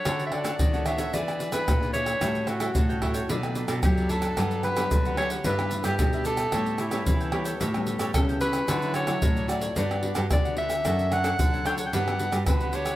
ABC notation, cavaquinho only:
X:1
M:4/4
L:1/16
Q:1/4=111
K:D
V:1 name="Cavaquinho"
[DAcf]2 [DAcf] [DAcf] z [Acf] [DAcf] [Acf] [E^GBd]2 [EGBd] [EGBd] z [GBd] [EGBd]2 | [EAcg]2 [EAcg] [EAcg] z [Acg] [EAcg] [Acg] [DABd]2 [DABd] [DABd] z [ABd] [DABd]2 | [DGBf]2 [DGBf] [DGBf] z [GBf] [DGBf] [GBf] [DGBe]2 [DGBe] [DGBe] z [GBe] [DGBe]2 | [GAcg]2 [GAcg] [GAcg] z [Acg] [GAcg] [Acg] [GAcg]2 [GAcg] [GAcg] z [Acg] [GAcg]2 |
[FAcd]2 [FAcd] [FAcd] z [Acd] [FAcd] [Acd] [DGBf]2 [DGBf] [DGBf] z [GBf] [DGBf]2 | [DAcf]2 [DAcf] [DAcf] z [Acf] [DAcf] [Acf] [DGBf]2 [DGBf] [DGBf] z [GBf] [DGBf]2 |]